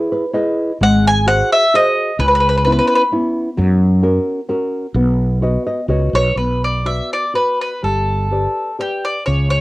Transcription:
Already playing: E4 G#4 B4
0.12 B4
0.33 E4 G#4 B4 D#5
0.81 G#1 G#3 F#5
1.07 G#5
1.26 F#4 G#4 C5 F#5
1.52 E5
1.74 F#4 G#4 C5 D#5
2.19 C#2 C#3 B4
2.28 B4
2.35 B4
2.40 B4
2.49 B4
2.57 B4
2.64 B3 C#4 E4 B4
2.72 B4
2.79 B4
2.87 B4
2.95 B4
3.12 B3 C#4 E4
3.57 F#2 F#3
4.03 C#4 F#4 A#4
4.49 C#4 F#4 A#4
4.94 B1 B3
5.42 F#4 B4 D#5
5.67 D#5
5.88 C#2 F#4 B4 C#5 D#5
6.13 B1 B4 C#5
6.36 B1 B3 B4
6.64 D5
6.85 F#4 B4 D5 E5
7.13 D5
7.34 F#4 B4 D5
7.61 B4
7.83 G1 G3 A4
8.31 G4 B4 D5
8.79 G4 B4 D5
9.05 D5
9.26 C#2 C#3 C#5
9.50 C#5

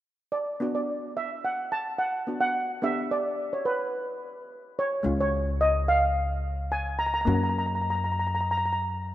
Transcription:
0.32 D5
0.60 B3 D4 F#4
0.75 D5
1.17 E5
1.45 F#5
1.72 A5
1.98 F#5
2.27 B3 D4 F#4
2.41 F#5
2.82 B3 D4 G4 E5
3.11 D5
3.53 C#5
3.65 B4
4.79 C#5
5.03 C#2 G#3 C#4 F4
5.21 C#5
5.61 D#5
5.88 F5
6.72 G#5
6.99 A#5
7.07 A#5
7.14 A#5
7.21 A#3 A#5
7.26 F#2 C#4 F#4 A#5
7.35 A#5
7.43 A#5
7.50 A#5
7.59 A#5
7.66 A#5
7.75 A#5
7.82 A#5
7.90 A#5
7.95 A#5
8.04 A#5
8.12 A#5
8.20 A#5
8.27 A#5
8.35 A#5
8.41 A#5
8.51 A#5
8.58 A#5
8.66 A#5
8.73 A#5

